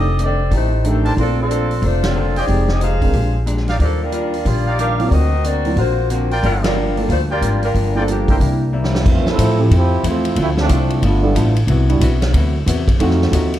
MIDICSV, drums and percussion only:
0, 0, Header, 1, 2, 480
1, 0, Start_track
1, 0, Tempo, 328407
1, 1719, Time_signature, 4, 2, 24, 8
1, 19866, End_track
2, 0, Start_track
2, 0, Title_t, "Drums"
2, 276, Note_on_c, 9, 42, 49
2, 422, Note_off_c, 9, 42, 0
2, 750, Note_on_c, 9, 36, 30
2, 752, Note_on_c, 9, 46, 44
2, 897, Note_off_c, 9, 36, 0
2, 898, Note_off_c, 9, 46, 0
2, 1235, Note_on_c, 9, 42, 48
2, 1381, Note_off_c, 9, 42, 0
2, 1541, Note_on_c, 9, 46, 35
2, 1688, Note_off_c, 9, 46, 0
2, 1713, Note_on_c, 9, 36, 29
2, 1725, Note_on_c, 9, 46, 40
2, 1859, Note_off_c, 9, 36, 0
2, 1871, Note_off_c, 9, 46, 0
2, 2203, Note_on_c, 9, 42, 49
2, 2349, Note_off_c, 9, 42, 0
2, 2497, Note_on_c, 9, 46, 34
2, 2643, Note_off_c, 9, 46, 0
2, 2664, Note_on_c, 9, 36, 33
2, 2666, Note_on_c, 9, 46, 41
2, 2810, Note_off_c, 9, 36, 0
2, 2813, Note_off_c, 9, 46, 0
2, 2973, Note_on_c, 9, 38, 73
2, 2976, Note_on_c, 9, 51, 60
2, 3119, Note_off_c, 9, 38, 0
2, 3122, Note_off_c, 9, 51, 0
2, 3451, Note_on_c, 9, 46, 36
2, 3597, Note_off_c, 9, 46, 0
2, 3623, Note_on_c, 9, 36, 32
2, 3628, Note_on_c, 9, 46, 41
2, 3769, Note_off_c, 9, 36, 0
2, 3774, Note_off_c, 9, 46, 0
2, 3923, Note_on_c, 9, 38, 48
2, 4069, Note_off_c, 9, 38, 0
2, 4107, Note_on_c, 9, 42, 45
2, 4254, Note_off_c, 9, 42, 0
2, 4408, Note_on_c, 9, 36, 42
2, 4412, Note_on_c, 9, 46, 32
2, 4554, Note_off_c, 9, 36, 0
2, 4558, Note_off_c, 9, 46, 0
2, 4581, Note_on_c, 9, 46, 43
2, 4584, Note_on_c, 9, 36, 30
2, 4727, Note_off_c, 9, 46, 0
2, 4730, Note_off_c, 9, 36, 0
2, 5072, Note_on_c, 9, 42, 46
2, 5218, Note_off_c, 9, 42, 0
2, 5220, Note_on_c, 9, 38, 27
2, 5367, Note_off_c, 9, 38, 0
2, 5374, Note_on_c, 9, 46, 35
2, 5386, Note_on_c, 9, 38, 40
2, 5520, Note_off_c, 9, 46, 0
2, 5532, Note_off_c, 9, 38, 0
2, 5547, Note_on_c, 9, 36, 31
2, 5552, Note_on_c, 9, 46, 39
2, 5693, Note_off_c, 9, 36, 0
2, 5698, Note_off_c, 9, 46, 0
2, 6024, Note_on_c, 9, 42, 47
2, 6170, Note_off_c, 9, 42, 0
2, 6337, Note_on_c, 9, 46, 35
2, 6483, Note_off_c, 9, 46, 0
2, 6511, Note_on_c, 9, 36, 32
2, 6514, Note_on_c, 9, 46, 46
2, 6657, Note_off_c, 9, 36, 0
2, 6660, Note_off_c, 9, 46, 0
2, 6998, Note_on_c, 9, 42, 48
2, 7145, Note_off_c, 9, 42, 0
2, 7302, Note_on_c, 9, 46, 35
2, 7448, Note_off_c, 9, 46, 0
2, 7472, Note_on_c, 9, 36, 31
2, 7481, Note_on_c, 9, 46, 41
2, 7618, Note_off_c, 9, 36, 0
2, 7627, Note_off_c, 9, 46, 0
2, 7956, Note_on_c, 9, 42, 47
2, 8102, Note_off_c, 9, 42, 0
2, 8256, Note_on_c, 9, 46, 32
2, 8402, Note_off_c, 9, 46, 0
2, 8429, Note_on_c, 9, 46, 42
2, 8430, Note_on_c, 9, 36, 33
2, 8575, Note_off_c, 9, 46, 0
2, 8576, Note_off_c, 9, 36, 0
2, 8916, Note_on_c, 9, 42, 50
2, 9062, Note_off_c, 9, 42, 0
2, 9227, Note_on_c, 9, 46, 35
2, 9373, Note_off_c, 9, 46, 0
2, 9399, Note_on_c, 9, 36, 29
2, 9403, Note_on_c, 9, 46, 41
2, 9545, Note_off_c, 9, 36, 0
2, 9550, Note_off_c, 9, 46, 0
2, 9706, Note_on_c, 9, 38, 76
2, 9709, Note_on_c, 9, 51, 66
2, 9852, Note_off_c, 9, 38, 0
2, 9855, Note_off_c, 9, 51, 0
2, 10190, Note_on_c, 9, 46, 34
2, 10336, Note_off_c, 9, 46, 0
2, 10363, Note_on_c, 9, 36, 35
2, 10371, Note_on_c, 9, 46, 43
2, 10509, Note_off_c, 9, 36, 0
2, 10518, Note_off_c, 9, 46, 0
2, 10849, Note_on_c, 9, 42, 52
2, 10995, Note_off_c, 9, 42, 0
2, 11146, Note_on_c, 9, 46, 36
2, 11292, Note_off_c, 9, 46, 0
2, 11322, Note_on_c, 9, 36, 28
2, 11332, Note_on_c, 9, 46, 43
2, 11468, Note_off_c, 9, 36, 0
2, 11478, Note_off_c, 9, 46, 0
2, 11809, Note_on_c, 9, 42, 51
2, 11955, Note_off_c, 9, 42, 0
2, 12106, Note_on_c, 9, 36, 53
2, 12111, Note_on_c, 9, 46, 37
2, 12252, Note_off_c, 9, 36, 0
2, 12257, Note_off_c, 9, 46, 0
2, 12283, Note_on_c, 9, 36, 33
2, 12290, Note_on_c, 9, 46, 45
2, 12429, Note_off_c, 9, 36, 0
2, 12436, Note_off_c, 9, 46, 0
2, 12923, Note_on_c, 9, 38, 55
2, 13069, Note_off_c, 9, 38, 0
2, 13080, Note_on_c, 9, 38, 76
2, 13226, Note_off_c, 9, 38, 0
2, 13240, Note_on_c, 9, 36, 72
2, 13243, Note_on_c, 9, 49, 75
2, 13386, Note_off_c, 9, 36, 0
2, 13389, Note_off_c, 9, 49, 0
2, 13537, Note_on_c, 9, 38, 54
2, 13684, Note_off_c, 9, 38, 0
2, 13717, Note_on_c, 9, 36, 25
2, 13720, Note_on_c, 9, 44, 60
2, 13720, Note_on_c, 9, 51, 71
2, 13863, Note_off_c, 9, 36, 0
2, 13866, Note_off_c, 9, 44, 0
2, 13866, Note_off_c, 9, 51, 0
2, 14195, Note_on_c, 9, 36, 26
2, 14198, Note_on_c, 9, 51, 67
2, 14342, Note_off_c, 9, 36, 0
2, 14344, Note_off_c, 9, 51, 0
2, 14674, Note_on_c, 9, 36, 19
2, 14677, Note_on_c, 9, 44, 59
2, 14677, Note_on_c, 9, 51, 72
2, 14820, Note_off_c, 9, 36, 0
2, 14823, Note_off_c, 9, 44, 0
2, 14823, Note_off_c, 9, 51, 0
2, 14980, Note_on_c, 9, 51, 50
2, 15126, Note_off_c, 9, 51, 0
2, 15146, Note_on_c, 9, 51, 61
2, 15149, Note_on_c, 9, 36, 25
2, 15292, Note_off_c, 9, 51, 0
2, 15295, Note_off_c, 9, 36, 0
2, 15454, Note_on_c, 9, 38, 60
2, 15600, Note_off_c, 9, 38, 0
2, 15628, Note_on_c, 9, 44, 54
2, 15628, Note_on_c, 9, 51, 68
2, 15629, Note_on_c, 9, 36, 24
2, 15775, Note_off_c, 9, 36, 0
2, 15775, Note_off_c, 9, 44, 0
2, 15775, Note_off_c, 9, 51, 0
2, 15937, Note_on_c, 9, 51, 46
2, 16084, Note_off_c, 9, 51, 0
2, 16112, Note_on_c, 9, 36, 23
2, 16117, Note_on_c, 9, 51, 67
2, 16258, Note_off_c, 9, 36, 0
2, 16263, Note_off_c, 9, 51, 0
2, 16594, Note_on_c, 9, 36, 26
2, 16602, Note_on_c, 9, 44, 54
2, 16602, Note_on_c, 9, 51, 62
2, 16740, Note_off_c, 9, 36, 0
2, 16748, Note_off_c, 9, 44, 0
2, 16748, Note_off_c, 9, 51, 0
2, 16903, Note_on_c, 9, 51, 48
2, 17049, Note_off_c, 9, 51, 0
2, 17072, Note_on_c, 9, 36, 19
2, 17072, Note_on_c, 9, 51, 56
2, 17218, Note_off_c, 9, 36, 0
2, 17218, Note_off_c, 9, 51, 0
2, 17387, Note_on_c, 9, 51, 49
2, 17533, Note_off_c, 9, 51, 0
2, 17554, Note_on_c, 9, 36, 22
2, 17558, Note_on_c, 9, 44, 55
2, 17558, Note_on_c, 9, 51, 73
2, 17700, Note_off_c, 9, 36, 0
2, 17704, Note_off_c, 9, 44, 0
2, 17704, Note_off_c, 9, 51, 0
2, 17859, Note_on_c, 9, 38, 58
2, 17862, Note_on_c, 9, 51, 47
2, 18005, Note_off_c, 9, 38, 0
2, 18008, Note_off_c, 9, 51, 0
2, 18033, Note_on_c, 9, 36, 25
2, 18037, Note_on_c, 9, 51, 69
2, 18179, Note_off_c, 9, 36, 0
2, 18183, Note_off_c, 9, 51, 0
2, 18517, Note_on_c, 9, 36, 19
2, 18525, Note_on_c, 9, 44, 62
2, 18525, Note_on_c, 9, 51, 68
2, 18663, Note_off_c, 9, 36, 0
2, 18672, Note_off_c, 9, 44, 0
2, 18672, Note_off_c, 9, 51, 0
2, 18821, Note_on_c, 9, 36, 57
2, 18833, Note_on_c, 9, 51, 48
2, 18967, Note_off_c, 9, 36, 0
2, 18980, Note_off_c, 9, 51, 0
2, 18997, Note_on_c, 9, 36, 19
2, 19002, Note_on_c, 9, 51, 56
2, 19143, Note_off_c, 9, 36, 0
2, 19148, Note_off_c, 9, 51, 0
2, 19153, Note_on_c, 9, 38, 29
2, 19299, Note_off_c, 9, 38, 0
2, 19319, Note_on_c, 9, 38, 47
2, 19466, Note_off_c, 9, 38, 0
2, 19478, Note_on_c, 9, 36, 20
2, 19484, Note_on_c, 9, 44, 59
2, 19484, Note_on_c, 9, 51, 69
2, 19624, Note_off_c, 9, 36, 0
2, 19630, Note_off_c, 9, 44, 0
2, 19630, Note_off_c, 9, 51, 0
2, 19786, Note_on_c, 9, 51, 45
2, 19866, Note_off_c, 9, 51, 0
2, 19866, End_track
0, 0, End_of_file